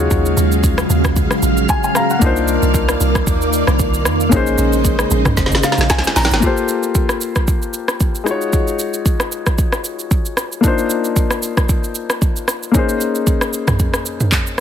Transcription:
Already playing: C#3 F#3 G#3 D#4 F4 F#4 C#5 F5
0.11 D#2, kick, shaker
0.26 shaker
0.37 D#2, shaker
0.52 shaker
0.64 kick, shaker
0.78 cross-stick, shaker
0.90 D#2, shaker
1.05 kick, cross-stick, shaker
1.16 kick, shaker
1.31 cross-stick, shaker
1.42 A#1, shaker
1.57 shaker
1.69 G#5, kick, shaker
1.84 G#5, shaker
1.95 F5 A#5, cross-stick, shaker
2.10 F#5, shaker
2.19 C2 D#3 A#3 D4 D#4 D5, kick, shaker
2.24 F4 C5
2.36 shaker
2.48 shaker
2.62 C2, shaker
2.74 kick, shaker
2.89 cross-stick, shaker
3.01 C2, shaker
3.15 kick, cross-stick, shaker
3.27 D#2, kick, shaker
3.42 shaker
3.53 shaker
3.67 C2, cross-stick, shaker
3.79 kick, shaker
3.94 shaker
4.05 F2, cross-stick, shaker
4.20 shaker
4.29 A#1 A#3 C#4 D#4, kick, shaker
4.34 G#4 C5
4.47 shaker
4.58 A#1, shaker
4.73 shaker
4.85 kick, shaker
4.99 cross-stick, shaker
5.11 A#1, shaker
5.25 kick, cross-stick, mid tom, shaker
5.37 F1, kick, snare, shaker
5.46 snare
5.52 G#1, snare, shaker
5.63 F5, snare, shaker
5.72 snare
5.78 A#1, snare, shaker
5.90 C2 G#5, kick, snare, shaker
5.98 snare
6.04 snare, shaker
6.16 A#1 A#5, snare, open hi-hat, shaker
6.25 snare
6.31 G#1, snare, shaker
6.40 A#3 F4 G4, kick, shaker
6.45 A4 C5
6.57 shaker
6.69 shaker
6.83 shaker
6.95 kick, shaker
7.09 cross-stick, shaker
7.21 shaker
7.36 kick, cross-stick, shaker
7.48 kick, shaker
7.62 shaker
7.74 shaker
7.88 cross-stick, shaker
8.00 kick, shaker
8.15 shaker
8.24 G#3 D#4 F4, cross-stick, shaker
8.29 F#4 C#5
8.41 shaker
8.53 kick, shaker
8.68 shaker
8.79 shaker
8.94 shaker
9.06 kick, shaker
9.20 cross-stick, shaker
9.32 shaker
9.46 kick, cross-stick, shaker
9.58 kick, shaker
9.72 cross-stick, shaker
9.84 shaker
9.99 shaker
10.11 kick, shaker
10.26 shaker
10.37 cross-stick, shaker
10.52 shaker
10.61 A#3 D4 D#4, kick, shaker
10.66 F4 C5
10.78 shaker
10.90 shaker
11.04 shaker
11.16 kick, shaker
11.31 cross-stick, shaker
11.43 shaker
11.57 kick, cross-stick, shaker
11.69 kick, shaker
11.84 shaker
11.95 shaker
12.10 cross-stick, shaker
12.22 kick, shaker
12.36 shaker
12.48 cross-stick, shaker
12.63 shaker
12.71 A#3 C#4 D#4, kick, shaker
12.77 G#4 C5
12.89 shaker
13.01 shaker
13.15 shaker
13.27 kick, shaker
13.41 cross-stick, shaker
13.53 shaker
13.68 kick, cross-stick, mid tom, shaker
13.79 kick, shaker
13.94 cross-stick, shaker
14.06 shaker
14.20 mid tom, shaker
14.32 kick, clap, shaker
14.47 shaker

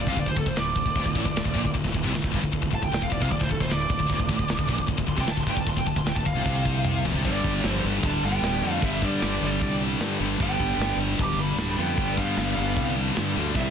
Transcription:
0.06 C2 C3 F5, kick
0.16 D1 D2 D5, kick, crash
0.26 D1 D2 C5, kick
0.36 D1 D2 A4, kick, crash
0.45 D1 D2 C5, kick
0.56 D1 D2 D5, snare, crash
0.76 D1 D2, kick, crash
0.85 D1 D2, kick
0.95 D1 D2 D3 A3 E4 F4, kick, crash
1.05 D1 D2, kick
1.15 A1 A2, kick, crash
1.25 D1 D2, kick
1.35 D1 D2, snare, crash
1.45 D1 D2, kick
1.55 A#1 A#2, kick, crash
1.65 D1 D2, kick
1.74 D1 D2, kick, crash
1.85 D1 D2, kick, snare
1.94 D1 D2, kick, crash
2.04 C2 C3, kick, snare
2.14 D1 D2, snare, crash
2.23 D1 D2, kick
2.34 G1 G2, kick, crash
2.44 D1 D2, kick
2.52 D1 D2, kick, crash
2.62 D1 D2, kick
2.72 D1 D2 A5, kick, crash
2.82 D1 D2 G5, kick
2.90 D1 D2 G5, snare, crash
3.01 D1 D2 F5, kick
3.10 D1 D2 D5, kick, crash
3.21 C2 C3 F5, kick
3.31 D1 D2 D5, kick, crash
3.40 D1 D2 C5, kick, snare
3.50 D1 D2 A4, kick, crash
3.59 D1 D2 C5, kick, snare
3.69 D1 D2 D5, snare, crash
3.73 D2
3.89 D1 D2, kick, crash
3.99 D1 D2, kick
4.09 D1 D2 D4, kick, crash
4.18 D1 D2, kick
4.23 D2
4.29 A1 A2, kick, crash
4.39 D1 D2, kick
4.49 D1 D2, snare, crash
4.58 D1 D2, kick
4.67 A#1 A#2, kick, crash
4.78 D1 D2, kick
4.87 D1 D2, kick, crash
4.97 D1 D2, kick
5.07 D1 D2 C6, kick, crash
5.16 C2 C3, kick, snare
5.21 G5
5.26 D1 D2, snare, crash
5.31 A5
5.36 D1 D2, kick
5.40 C6
5.46 G1 G2 G5, kick, crash
5.56 D1 D2, kick
5.61 A5
5.66 D1 D2 C6, kick, crash
5.75 D1 D2 G5, kick
5.85 D1 D2 A5, kick, crash
5.96 D1 D2 C6, kick
6.05 D1 D2 G5, snare, crash
6.14 D1 D2 A5, kick
6.26 D1 D2 F5, kick, crash
6.35 C2 C3
6.45 C2 C3, kick
6.65 kick
6.85 mid tom
7.05 E1 E2, floor tom
7.15 C2 C3
7.25 G1 G2 D3 G3 D4 A4 B4 D5, kick, open hi-hat
7.43 G1 G2 D3 G3, kick, open hi-hat
7.63 G1 G2 D3 G3, snare, open hi-hat
7.68 F3 C5
7.83 G1 G2 D3 G3, open hi-hat
8.03 D1 G2 D3 G3 D4 A5, kick
8.23 G1 G2 D3 G3 B3 G5, open hi-hat
8.42 D1 G2 D3 G3, snare, open hi-hat
8.61 F2 G2 D3 G3, open hi-hat
8.68 A3
8.73 F5
8.82 G1 G2 D3 G3 E5, kick, open hi-hat
9.02 G2 D3 G3 D5, kick, open hi-hat
9.06 G3
9.21 G1 G2 D3 G3, snare, open hi-hat
9.41 G1 G2 D3 G3 D5, open hi-hat
9.61 C2 G2 D3 G3, kick
9.81 G2 D3 G3, open hi-hat
9.99 G2 D3 G3, snare, open hi-hat
10.20 G1 G2 D3 G3, open hi-hat
10.40 G1 G2 D3 G3 B3 G5, kick
10.59 G1 G2 D3 G3, kick, open hi-hat
10.77 G1 G2 D3 G3, open hi-hat
10.82 snare
10.96 G1 G2 D3 G3
11.00 open hi-hat
11.19 D1 G2 D3 G3 G4 D6, kick, open hi-hat
11.36 G1 G2 D3 G3, open hi-hat
11.40 D4 B5
11.56 D1 G2 D3 G3, snare, open hi-hat
11.78 F2 G2 D3 G3 B3 G5, open hi-hat
11.96 G1 G2 D3 G3, kick, open hi-hat
12.17 G2 D3 G3 B3 F5, kick, open hi-hat
12.36 G1 G2 D3 G3, snare, open hi-hat
12.55 G1 G2 D3 G3 B3 F5, open hi-hat
12.76 C2 G2 D3 G3, kick, open hi-hat
12.95 G2 D3 G3, open hi-hat
13.15 G2 D3 G3, snare, open hi-hat
13.34 D2 G2 D3 G3, open hi-hat
13.39 G2
13.54 C2 C3 G3 C4 E4 E5, kick, crash

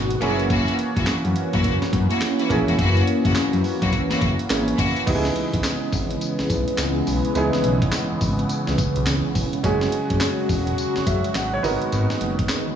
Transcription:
Already playing: G#1 B2 D#3 G#3 A#3 B3 D#4 F#4
0.10 closed hi-hat
0.21 F#1 E3 A#3 C#4 E4 F#4 G#4, closed hi-hat
0.40 closed hi-hat
0.50 A#3 E4 F#4, kick, closed hi-hat
0.68 closed hi-hat
0.79 closed hi-hat
0.96 F#1 A#3 E4 F#4, kick, closed hi-hat
1.07 F#2, snare, clap, closed hi-hat
1.25 F#2, closed hi-hat
1.36 closed hi-hat
1.53 F#2 A#3 E4 F#4, kick, closed hi-hat
1.64 F#1, kick, closed hi-hat
1.82 snare, closed hi-hat
1.93 F#2, kick, closed hi-hat
2.10 A#3 E4 F#4, closed hi-hat
2.21 snare, clap, closed hi-hat
2.39 A#3 E4 F#4, closed hi-hat
2.49 A#1 A#3 C#4 E4 G#4, kick, closed hi-hat
2.67 E1 A#3 E4 F#4, closed hi-hat
2.78 F#1 A#3 E4 F#4, kick, closed hi-hat
2.97 closed hi-hat
3.07 closed hi-hat
3.25 F#1 A#3 E4 F#4, kick, closed hi-hat
3.35 F#2, snare, clap, closed hi-hat
3.53 F#2, closed hi-hat
3.64 open hi-hat
3.81 F#2 A#3 E4 F#4, kick, closed hi-hat
3.93 kick, closed hi-hat
4.10 F#1 A#3 E4 F#4, snare, closed hi-hat
4.21 F#1, kick, closed hi-hat
4.39 closed hi-hat
4.50 G#1 A#3 C#4 E4 G#4, snare, clap, closed hi-hat
4.68 closed hi-hat
4.78 F#1 A#3 E4 F#4, kick, closed hi-hat
4.96 closed hi-hat
5.06 C#2 C#3 E3 G#3 B3 D#4 E4 G4, kick, closed hi-hat, crash, tambourine
5.15 G#4
5.25 snare
5.36 closed hi-hat
5.53 B1, kick, closed hi-hat
5.64 snare, clap, closed hi-hat, tambourine
5.93 G#1, kick, open hi-hat, tambourine
6.11 closed hi-hat
6.21 closed hi-hat, tambourine
6.39 B1, snare
6.50 B1, kick, closed hi-hat, tambourine
6.68 closed hi-hat
6.78 C#2, snare, clap, closed hi-hat, tambourine
7.07 B1, open hi-hat, tambourine
7.25 closed hi-hat
7.35 C#2 B3 D#4 E4 G#4, closed hi-hat, tambourine
7.53 snare
7.64 B1, closed hi-hat
7.82 kick, closed hi-hat
7.92 snare, clap, closed hi-hat, tambourine
8.11 G#1
8.21 G#1, kick, open hi-hat, tambourine
8.39 closed hi-hat
8.49 closed hi-hat, tambourine
8.67 C#2, snare
8.78 kick, closed hi-hat, tambourine
8.96 B1, closed hi-hat
9.06 C#2, snare, clap, closed hi-hat, tambourine
9.35 E1, kick, open hi-hat, tambourine
9.53 closed hi-hat
9.63 F#1 F#3 G#3 C#4 F#4 G#4, kick, closed hi-hat, tambourine
9.81 snare
9.92 closed hi-hat
10.10 F#1, kick, closed hi-hat
10.21 snare, clap, closed hi-hat, tambourine
10.49 E1, kick, open hi-hat, tambourine
10.67 closed hi-hat
10.78 closed hi-hat, tambourine
10.96 F#1, snare
11.07 F#1 E5, kick, closed hi-hat, tambourine
11.24 closed hi-hat
11.35 G#1 F#5, snare, clap, closed hi-hat, tambourine
11.54 C#5
11.63 G#1 D#3 B3 D#4 F#4 A#4, open hi-hat, tambourine
11.82 closed hi-hat
11.92 G#1, closed hi-hat, tambourine
12.10 snare
12.21 F#1, closed hi-hat
12.39 kick, closed hi-hat
12.49 snare, clap, closed hi-hat, tambourine
12.68 D#2

